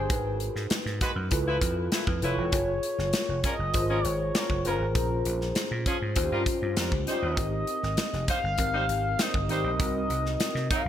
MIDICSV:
0, 0, Header, 1, 7, 480
1, 0, Start_track
1, 0, Tempo, 606061
1, 81, Time_signature, 4, 2, 24, 8
1, 8622, End_track
2, 0, Start_track
2, 0, Title_t, "Analog synth lead"
2, 0, Program_c, 0, 81
2, 0, Note_on_c, 0, 68, 86
2, 568, Note_off_c, 0, 68, 0
2, 1770, Note_on_c, 0, 73, 95
2, 2694, Note_off_c, 0, 73, 0
2, 2735, Note_on_c, 0, 75, 107
2, 3219, Note_off_c, 0, 75, 0
2, 3219, Note_on_c, 0, 73, 107
2, 3457, Note_off_c, 0, 73, 0
2, 3457, Note_on_c, 0, 73, 91
2, 3695, Note_on_c, 0, 70, 83
2, 3707, Note_off_c, 0, 73, 0
2, 4408, Note_off_c, 0, 70, 0
2, 5615, Note_on_c, 0, 75, 100
2, 6535, Note_off_c, 0, 75, 0
2, 6576, Note_on_c, 0, 77, 112
2, 7293, Note_on_c, 0, 75, 101
2, 7304, Note_off_c, 0, 77, 0
2, 7526, Note_off_c, 0, 75, 0
2, 7532, Note_on_c, 0, 75, 107
2, 8453, Note_off_c, 0, 75, 0
2, 8495, Note_on_c, 0, 77, 109
2, 8622, Note_off_c, 0, 77, 0
2, 8622, End_track
3, 0, Start_track
3, 0, Title_t, "Tine electric piano"
3, 0, Program_c, 1, 4
3, 0, Control_c, 1, 64, 127
3, 0, Note_on_c, 1, 62, 56
3, 0, Note_on_c, 1, 67, 53
3, 0, Note_on_c, 1, 68, 54
3, 0, Note_on_c, 1, 70, 56
3, 0, Note_on_c, 1, 72, 62
3, 78, Note_on_c, 1, 63, 59
3, 80, Note_on_c, 1, 66, 57
3, 85, Note_off_c, 1, 70, 0
3, 85, Note_on_c, 1, 70, 60
3, 86, Note_on_c, 1, 71, 68
3, 90, Control_c, 1, 64, 0
3, 93, Note_off_c, 1, 62, 0
3, 94, Note_off_c, 1, 67, 0
3, 97, Note_off_c, 1, 68, 0
3, 97, Note_off_c, 1, 72, 0
3, 225, Control_c, 1, 64, 127
3, 874, Note_off_c, 1, 63, 0
3, 875, Note_off_c, 1, 66, 0
3, 877, Note_off_c, 1, 70, 0
3, 878, Note_off_c, 1, 71, 0
3, 1040, Note_on_c, 1, 64, 75
3, 1043, Note_on_c, 1, 65, 72
3, 1044, Note_on_c, 1, 69, 72
3, 1049, Note_on_c, 1, 71, 84
3, 1053, Control_c, 1, 64, 0
3, 1174, Control_c, 1, 64, 127
3, 1636, Note_off_c, 1, 64, 0
3, 1638, Note_off_c, 1, 65, 0
3, 1639, Note_off_c, 1, 69, 0
3, 1641, Note_off_c, 1, 71, 0
3, 1760, Note_on_c, 1, 64, 59
3, 1764, Note_on_c, 1, 65, 53
3, 1767, Note_on_c, 1, 69, 57
3, 1769, Note_on_c, 1, 71, 66
3, 1959, Note_off_c, 1, 64, 0
3, 1961, Note_off_c, 1, 65, 0
3, 1963, Note_off_c, 1, 69, 0
3, 1964, Note_off_c, 1, 71, 0
3, 1998, Note_on_c, 1, 65, 58
3, 2000, Note_on_c, 1, 68, 53
3, 2005, Note_on_c, 1, 70, 57
3, 2005, Note_on_c, 1, 73, 72
3, 2012, Control_c, 1, 64, 0
3, 2137, Control_c, 1, 64, 127
3, 2794, Note_off_c, 1, 65, 0
3, 2795, Note_off_c, 1, 68, 0
3, 2797, Note_off_c, 1, 70, 0
3, 2798, Note_off_c, 1, 73, 0
3, 2960, Note_on_c, 1, 65, 70
3, 2963, Note_on_c, 1, 68, 60
3, 2966, Note_on_c, 1, 70, 63
3, 2970, Note_on_c, 1, 72, 77
3, 3556, Note_off_c, 1, 65, 0
3, 3558, Note_off_c, 1, 68, 0
3, 3560, Note_off_c, 1, 70, 0
3, 3561, Note_off_c, 1, 72, 0
3, 3677, Note_on_c, 1, 65, 56
3, 3680, Note_on_c, 1, 68, 54
3, 3682, Note_on_c, 1, 70, 53
3, 3685, Note_on_c, 1, 72, 62
3, 3878, Note_off_c, 1, 65, 0
3, 3879, Note_off_c, 1, 68, 0
3, 3880, Note_off_c, 1, 70, 0
3, 3882, Note_off_c, 1, 72, 0
3, 3919, Note_on_c, 1, 61, 62
3, 3922, Note_on_c, 1, 65, 57
3, 3924, Note_on_c, 1, 68, 59
3, 3930, Note_on_c, 1, 72, 70
3, 3932, Control_c, 1, 64, 0
3, 4083, Control_c, 1, 64, 127
3, 4714, Note_off_c, 1, 61, 0
3, 4716, Note_off_c, 1, 65, 0
3, 4717, Note_off_c, 1, 68, 0
3, 4719, Note_off_c, 1, 72, 0
3, 4877, Note_on_c, 1, 61, 78
3, 4881, Note_on_c, 1, 65, 71
3, 4883, Note_on_c, 1, 66, 54
3, 4885, Note_on_c, 1, 72, 85
3, 4892, Control_c, 1, 64, 0
3, 4933, Note_off_c, 1, 66, 0
3, 4935, Note_on_c, 1, 67, 69
3, 5023, Control_c, 1, 64, 127
3, 5475, Note_off_c, 1, 61, 0
3, 5477, Note_off_c, 1, 65, 0
3, 5479, Note_off_c, 1, 72, 0
3, 5504, Note_off_c, 1, 67, 0
3, 5602, Note_on_c, 1, 61, 61
3, 5606, Note_on_c, 1, 65, 49
3, 5610, Note_on_c, 1, 67, 52
3, 5614, Note_on_c, 1, 72, 63
3, 5800, Note_off_c, 1, 61, 0
3, 5802, Note_off_c, 1, 65, 0
3, 5804, Note_off_c, 1, 67, 0
3, 5806, Note_off_c, 1, 72, 0
3, 5841, Note_on_c, 1, 60, 60
3, 5842, Note_on_c, 1, 63, 55
3, 5847, Note_on_c, 1, 67, 60
3, 5849, Note_on_c, 1, 70, 68
3, 5850, Control_c, 1, 64, 0
3, 5977, Control_c, 1, 64, 127
3, 6634, Note_off_c, 1, 60, 0
3, 6635, Note_off_c, 1, 63, 0
3, 6638, Note_off_c, 1, 67, 0
3, 6638, Note_off_c, 1, 70, 0
3, 6798, Note_on_c, 1, 60, 61
3, 6800, Note_on_c, 1, 63, 59
3, 6803, Note_on_c, 1, 67, 59
3, 6805, Note_on_c, 1, 70, 75
3, 7394, Note_off_c, 1, 60, 0
3, 7395, Note_off_c, 1, 63, 0
3, 7397, Note_off_c, 1, 67, 0
3, 7398, Note_off_c, 1, 70, 0
3, 7514, Note_on_c, 1, 60, 57
3, 7516, Note_on_c, 1, 63, 52
3, 7520, Note_on_c, 1, 67, 51
3, 7524, Note_on_c, 1, 70, 69
3, 7715, Note_off_c, 1, 60, 0
3, 7716, Note_off_c, 1, 63, 0
3, 7718, Note_off_c, 1, 67, 0
3, 7720, Note_off_c, 1, 70, 0
3, 7754, Note_on_c, 1, 60, 60
3, 7760, Note_on_c, 1, 63, 56
3, 7765, Note_on_c, 1, 66, 61
3, 7766, Note_on_c, 1, 70, 71
3, 7769, Control_c, 1, 64, 0
3, 7904, Control_c, 1, 64, 127
3, 8550, Note_off_c, 1, 60, 0
3, 8553, Note_off_c, 1, 63, 0
3, 8555, Note_off_c, 1, 66, 0
3, 8556, Note_off_c, 1, 70, 0
3, 8622, End_track
4, 0, Start_track
4, 0, Title_t, "Horn section"
4, 0, Program_c, 2, 61
4, 799, Note_on_c, 2, 66, 77
4, 800, Note_on_c, 2, 56, 86
4, 801, Note_on_c, 2, 71, 97
4, 876, Note_off_c, 2, 66, 0
4, 877, Note_off_c, 2, 56, 0
4, 878, Note_off_c, 2, 71, 0
4, 1158, Note_on_c, 2, 71, 93
4, 1159, Note_on_c, 2, 53, 80
4, 1161, Note_on_c, 2, 64, 82
4, 1236, Note_off_c, 2, 71, 0
4, 1237, Note_off_c, 2, 53, 0
4, 1237, Note_off_c, 2, 64, 0
4, 1524, Note_on_c, 2, 64, 66
4, 1525, Note_on_c, 2, 71, 71
4, 1527, Note_on_c, 2, 53, 62
4, 1625, Note_off_c, 2, 64, 0
4, 1625, Note_off_c, 2, 71, 0
4, 1627, Note_off_c, 2, 53, 0
4, 1761, Note_on_c, 2, 64, 74
4, 1762, Note_on_c, 2, 53, 75
4, 1763, Note_on_c, 2, 71, 81
4, 1914, Note_off_c, 2, 64, 0
4, 1915, Note_off_c, 2, 53, 0
4, 1916, Note_off_c, 2, 71, 0
4, 2725, Note_on_c, 2, 53, 78
4, 2727, Note_on_c, 2, 70, 91
4, 2729, Note_on_c, 2, 61, 79
4, 2801, Note_off_c, 2, 53, 0
4, 2802, Note_off_c, 2, 70, 0
4, 2803, Note_off_c, 2, 61, 0
4, 3085, Note_on_c, 2, 61, 78
4, 3085, Note_on_c, 2, 70, 88
4, 3086, Note_on_c, 2, 53, 84
4, 3160, Note_off_c, 2, 70, 0
4, 3161, Note_off_c, 2, 53, 0
4, 3161, Note_off_c, 2, 61, 0
4, 3443, Note_on_c, 2, 61, 66
4, 3444, Note_on_c, 2, 70, 74
4, 3445, Note_on_c, 2, 53, 63
4, 3545, Note_off_c, 2, 53, 0
4, 3545, Note_off_c, 2, 61, 0
4, 3545, Note_off_c, 2, 70, 0
4, 3684, Note_on_c, 2, 61, 73
4, 3685, Note_on_c, 2, 70, 87
4, 3686, Note_on_c, 2, 53, 75
4, 3836, Note_off_c, 2, 61, 0
4, 3837, Note_off_c, 2, 70, 0
4, 3838, Note_off_c, 2, 53, 0
4, 4643, Note_on_c, 2, 61, 85
4, 4644, Note_on_c, 2, 68, 93
4, 4646, Note_on_c, 2, 53, 84
4, 4719, Note_off_c, 2, 61, 0
4, 4719, Note_off_c, 2, 68, 0
4, 4721, Note_off_c, 2, 53, 0
4, 5001, Note_on_c, 2, 70, 83
4, 5003, Note_on_c, 2, 55, 80
4, 5003, Note_on_c, 2, 65, 80
4, 5077, Note_off_c, 2, 70, 0
4, 5079, Note_off_c, 2, 55, 0
4, 5079, Note_off_c, 2, 65, 0
4, 5363, Note_on_c, 2, 70, 69
4, 5364, Note_on_c, 2, 65, 64
4, 5365, Note_on_c, 2, 55, 64
4, 5464, Note_off_c, 2, 65, 0
4, 5464, Note_off_c, 2, 70, 0
4, 5465, Note_off_c, 2, 55, 0
4, 5600, Note_on_c, 2, 55, 74
4, 5602, Note_on_c, 2, 63, 75
4, 5602, Note_on_c, 2, 72, 82
4, 5906, Note_off_c, 2, 55, 0
4, 5907, Note_off_c, 2, 63, 0
4, 5907, Note_off_c, 2, 72, 0
4, 6556, Note_on_c, 2, 72, 97
4, 6557, Note_on_c, 2, 55, 85
4, 6558, Note_on_c, 2, 63, 78
4, 6634, Note_off_c, 2, 72, 0
4, 6635, Note_off_c, 2, 55, 0
4, 6635, Note_off_c, 2, 63, 0
4, 6917, Note_on_c, 2, 55, 83
4, 6918, Note_on_c, 2, 63, 81
4, 6919, Note_on_c, 2, 72, 84
4, 6994, Note_off_c, 2, 55, 0
4, 6995, Note_off_c, 2, 63, 0
4, 6996, Note_off_c, 2, 72, 0
4, 7279, Note_on_c, 2, 55, 66
4, 7280, Note_on_c, 2, 72, 69
4, 7282, Note_on_c, 2, 63, 65
4, 7381, Note_off_c, 2, 55, 0
4, 7382, Note_off_c, 2, 72, 0
4, 7383, Note_off_c, 2, 63, 0
4, 7523, Note_on_c, 2, 55, 82
4, 7523, Note_on_c, 2, 72, 84
4, 7524, Note_on_c, 2, 63, 72
4, 7675, Note_off_c, 2, 55, 0
4, 7675, Note_off_c, 2, 72, 0
4, 7676, Note_off_c, 2, 63, 0
4, 8481, Note_on_c, 2, 63, 90
4, 8482, Note_on_c, 2, 70, 96
4, 8485, Note_on_c, 2, 54, 83
4, 8557, Note_off_c, 2, 63, 0
4, 8557, Note_off_c, 2, 70, 0
4, 8559, Note_off_c, 2, 54, 0
4, 8622, End_track
5, 0, Start_track
5, 0, Title_t, "Slap bass"
5, 0, Program_c, 3, 36
5, 78, Note_on_c, 3, 32, 97
5, 382, Note_off_c, 3, 32, 0
5, 440, Note_on_c, 3, 44, 76
5, 541, Note_off_c, 3, 44, 0
5, 678, Note_on_c, 3, 44, 83
5, 780, Note_off_c, 3, 44, 0
5, 916, Note_on_c, 3, 42, 70
5, 1019, Note_off_c, 3, 42, 0
5, 1041, Note_on_c, 3, 37, 86
5, 1243, Note_off_c, 3, 37, 0
5, 1279, Note_on_c, 3, 41, 83
5, 1482, Note_off_c, 3, 41, 0
5, 1640, Note_on_c, 3, 41, 73
5, 1741, Note_off_c, 3, 41, 0
5, 1760, Note_on_c, 3, 29, 74
5, 1862, Note_off_c, 3, 29, 0
5, 1881, Note_on_c, 3, 28, 75
5, 2001, Note_off_c, 3, 28, 0
5, 2001, Note_on_c, 3, 30, 99
5, 2203, Note_off_c, 3, 30, 0
5, 2363, Note_on_c, 3, 30, 87
5, 2463, Note_off_c, 3, 30, 0
5, 2603, Note_on_c, 3, 29, 76
5, 2703, Note_off_c, 3, 29, 0
5, 2843, Note_on_c, 3, 30, 65
5, 2943, Note_off_c, 3, 30, 0
5, 2963, Note_on_c, 3, 32, 79
5, 3164, Note_off_c, 3, 32, 0
5, 3203, Note_on_c, 3, 32, 78
5, 3404, Note_off_c, 3, 32, 0
5, 3561, Note_on_c, 3, 30, 74
5, 3662, Note_off_c, 3, 30, 0
5, 3683, Note_on_c, 3, 30, 74
5, 3783, Note_off_c, 3, 30, 0
5, 3799, Note_on_c, 3, 32, 73
5, 3922, Note_off_c, 3, 32, 0
5, 3922, Note_on_c, 3, 34, 85
5, 4123, Note_off_c, 3, 34, 0
5, 4163, Note_on_c, 3, 34, 81
5, 4363, Note_off_c, 3, 34, 0
5, 4524, Note_on_c, 3, 46, 84
5, 4623, Note_off_c, 3, 46, 0
5, 4765, Note_on_c, 3, 44, 67
5, 4864, Note_off_c, 3, 44, 0
5, 4882, Note_on_c, 3, 39, 76
5, 4982, Note_off_c, 3, 39, 0
5, 5004, Note_on_c, 3, 43, 75
5, 5103, Note_off_c, 3, 43, 0
5, 5243, Note_on_c, 3, 43, 78
5, 5343, Note_off_c, 3, 43, 0
5, 5362, Note_on_c, 3, 41, 72
5, 5462, Note_off_c, 3, 41, 0
5, 5480, Note_on_c, 3, 37, 76
5, 5581, Note_off_c, 3, 37, 0
5, 5721, Note_on_c, 3, 39, 69
5, 5822, Note_off_c, 3, 39, 0
5, 5838, Note_on_c, 3, 32, 94
5, 6040, Note_off_c, 3, 32, 0
5, 6203, Note_on_c, 3, 32, 84
5, 6302, Note_off_c, 3, 32, 0
5, 6441, Note_on_c, 3, 29, 79
5, 6541, Note_off_c, 3, 29, 0
5, 6682, Note_on_c, 3, 31, 74
5, 6782, Note_off_c, 3, 31, 0
5, 6801, Note_on_c, 3, 32, 84
5, 7002, Note_off_c, 3, 32, 0
5, 7036, Note_on_c, 3, 32, 77
5, 7239, Note_off_c, 3, 32, 0
5, 7398, Note_on_c, 3, 31, 78
5, 7512, Note_off_c, 3, 31, 0
5, 7512, Note_on_c, 3, 32, 77
5, 7616, Note_off_c, 3, 32, 0
5, 7632, Note_on_c, 3, 34, 71
5, 7736, Note_off_c, 3, 34, 0
5, 7757, Note_on_c, 3, 36, 90
5, 7959, Note_off_c, 3, 36, 0
5, 7997, Note_on_c, 3, 36, 80
5, 8199, Note_off_c, 3, 36, 0
5, 8354, Note_on_c, 3, 48, 81
5, 8457, Note_off_c, 3, 48, 0
5, 8596, Note_on_c, 3, 36, 69
5, 8622, Note_off_c, 3, 36, 0
5, 8622, End_track
6, 0, Start_track
6, 0, Title_t, "Muted slap bass strokes"
6, 559, Note_on_c, 9, 29, 40
6, 639, Note_off_c, 9, 29, 0
6, 8622, End_track
7, 0, Start_track
7, 0, Title_t, "Drums"
7, 78, Note_on_c, 9, 42, 73
7, 79, Note_on_c, 9, 36, 103
7, 157, Note_off_c, 9, 42, 0
7, 158, Note_off_c, 9, 36, 0
7, 317, Note_on_c, 9, 42, 55
7, 396, Note_off_c, 9, 42, 0
7, 442, Note_on_c, 9, 38, 30
7, 522, Note_off_c, 9, 38, 0
7, 556, Note_on_c, 9, 42, 78
7, 561, Note_on_c, 9, 38, 104
7, 635, Note_off_c, 9, 42, 0
7, 640, Note_off_c, 9, 38, 0
7, 682, Note_on_c, 9, 38, 28
7, 761, Note_off_c, 9, 38, 0
7, 799, Note_on_c, 9, 42, 70
7, 801, Note_on_c, 9, 36, 84
7, 878, Note_off_c, 9, 42, 0
7, 880, Note_off_c, 9, 36, 0
7, 1036, Note_on_c, 9, 42, 79
7, 1042, Note_on_c, 9, 36, 83
7, 1115, Note_off_c, 9, 42, 0
7, 1121, Note_off_c, 9, 36, 0
7, 1279, Note_on_c, 9, 36, 79
7, 1282, Note_on_c, 9, 42, 67
7, 1358, Note_off_c, 9, 36, 0
7, 1361, Note_off_c, 9, 42, 0
7, 1519, Note_on_c, 9, 42, 75
7, 1521, Note_on_c, 9, 38, 91
7, 1598, Note_off_c, 9, 42, 0
7, 1601, Note_off_c, 9, 38, 0
7, 1641, Note_on_c, 9, 36, 74
7, 1720, Note_off_c, 9, 36, 0
7, 1760, Note_on_c, 9, 42, 55
7, 1840, Note_off_c, 9, 42, 0
7, 1998, Note_on_c, 9, 42, 77
7, 2001, Note_on_c, 9, 36, 98
7, 2078, Note_off_c, 9, 42, 0
7, 2081, Note_off_c, 9, 36, 0
7, 2241, Note_on_c, 9, 42, 58
7, 2320, Note_off_c, 9, 42, 0
7, 2366, Note_on_c, 9, 38, 30
7, 2446, Note_off_c, 9, 38, 0
7, 2478, Note_on_c, 9, 42, 77
7, 2483, Note_on_c, 9, 38, 104
7, 2557, Note_off_c, 9, 42, 0
7, 2563, Note_off_c, 9, 38, 0
7, 2722, Note_on_c, 9, 42, 68
7, 2724, Note_on_c, 9, 36, 83
7, 2801, Note_off_c, 9, 42, 0
7, 2803, Note_off_c, 9, 36, 0
7, 2959, Note_on_c, 9, 42, 74
7, 2964, Note_on_c, 9, 36, 84
7, 3038, Note_off_c, 9, 42, 0
7, 3044, Note_off_c, 9, 36, 0
7, 3205, Note_on_c, 9, 42, 65
7, 3284, Note_off_c, 9, 42, 0
7, 3443, Note_on_c, 9, 42, 71
7, 3446, Note_on_c, 9, 38, 102
7, 3522, Note_off_c, 9, 42, 0
7, 3525, Note_off_c, 9, 38, 0
7, 3562, Note_on_c, 9, 36, 66
7, 3641, Note_off_c, 9, 36, 0
7, 3682, Note_on_c, 9, 42, 54
7, 3761, Note_off_c, 9, 42, 0
7, 3922, Note_on_c, 9, 36, 106
7, 3922, Note_on_c, 9, 42, 76
7, 4001, Note_off_c, 9, 36, 0
7, 4001, Note_off_c, 9, 42, 0
7, 4161, Note_on_c, 9, 42, 61
7, 4241, Note_off_c, 9, 42, 0
7, 4285, Note_on_c, 9, 38, 28
7, 4364, Note_off_c, 9, 38, 0
7, 4398, Note_on_c, 9, 42, 75
7, 4403, Note_on_c, 9, 38, 101
7, 4477, Note_off_c, 9, 42, 0
7, 4483, Note_off_c, 9, 38, 0
7, 4641, Note_on_c, 9, 36, 84
7, 4641, Note_on_c, 9, 42, 71
7, 4720, Note_off_c, 9, 36, 0
7, 4720, Note_off_c, 9, 42, 0
7, 4876, Note_on_c, 9, 42, 76
7, 4882, Note_on_c, 9, 36, 82
7, 4955, Note_off_c, 9, 42, 0
7, 4961, Note_off_c, 9, 36, 0
7, 5118, Note_on_c, 9, 36, 75
7, 5121, Note_on_c, 9, 42, 64
7, 5197, Note_off_c, 9, 36, 0
7, 5200, Note_off_c, 9, 42, 0
7, 5359, Note_on_c, 9, 42, 78
7, 5361, Note_on_c, 9, 38, 99
7, 5438, Note_off_c, 9, 42, 0
7, 5440, Note_off_c, 9, 38, 0
7, 5480, Note_on_c, 9, 36, 73
7, 5559, Note_off_c, 9, 36, 0
7, 5600, Note_on_c, 9, 42, 59
7, 5603, Note_on_c, 9, 38, 33
7, 5679, Note_off_c, 9, 42, 0
7, 5682, Note_off_c, 9, 38, 0
7, 5838, Note_on_c, 9, 42, 71
7, 5839, Note_on_c, 9, 36, 97
7, 5917, Note_off_c, 9, 42, 0
7, 5918, Note_off_c, 9, 36, 0
7, 6077, Note_on_c, 9, 42, 62
7, 6157, Note_off_c, 9, 42, 0
7, 6202, Note_on_c, 9, 38, 27
7, 6281, Note_off_c, 9, 38, 0
7, 6314, Note_on_c, 9, 42, 75
7, 6319, Note_on_c, 9, 38, 111
7, 6393, Note_off_c, 9, 42, 0
7, 6398, Note_off_c, 9, 38, 0
7, 6438, Note_on_c, 9, 38, 31
7, 6518, Note_off_c, 9, 38, 0
7, 6558, Note_on_c, 9, 42, 75
7, 6560, Note_on_c, 9, 36, 84
7, 6637, Note_off_c, 9, 42, 0
7, 6639, Note_off_c, 9, 36, 0
7, 6793, Note_on_c, 9, 42, 72
7, 6800, Note_on_c, 9, 36, 79
7, 6872, Note_off_c, 9, 42, 0
7, 6879, Note_off_c, 9, 36, 0
7, 7042, Note_on_c, 9, 42, 64
7, 7121, Note_off_c, 9, 42, 0
7, 7278, Note_on_c, 9, 42, 76
7, 7281, Note_on_c, 9, 38, 97
7, 7358, Note_off_c, 9, 42, 0
7, 7360, Note_off_c, 9, 38, 0
7, 7399, Note_on_c, 9, 36, 76
7, 7478, Note_off_c, 9, 36, 0
7, 7519, Note_on_c, 9, 42, 53
7, 7598, Note_off_c, 9, 42, 0
7, 7759, Note_on_c, 9, 36, 104
7, 7759, Note_on_c, 9, 42, 73
7, 7838, Note_off_c, 9, 36, 0
7, 7838, Note_off_c, 9, 42, 0
7, 8000, Note_on_c, 9, 42, 58
7, 8079, Note_off_c, 9, 42, 0
7, 8123, Note_on_c, 9, 38, 29
7, 8202, Note_off_c, 9, 38, 0
7, 8236, Note_on_c, 9, 42, 77
7, 8241, Note_on_c, 9, 38, 102
7, 8315, Note_off_c, 9, 42, 0
7, 8321, Note_off_c, 9, 38, 0
7, 8362, Note_on_c, 9, 38, 30
7, 8441, Note_off_c, 9, 38, 0
7, 8479, Note_on_c, 9, 36, 88
7, 8480, Note_on_c, 9, 42, 77
7, 8558, Note_off_c, 9, 36, 0
7, 8559, Note_off_c, 9, 42, 0
7, 8622, End_track
0, 0, End_of_file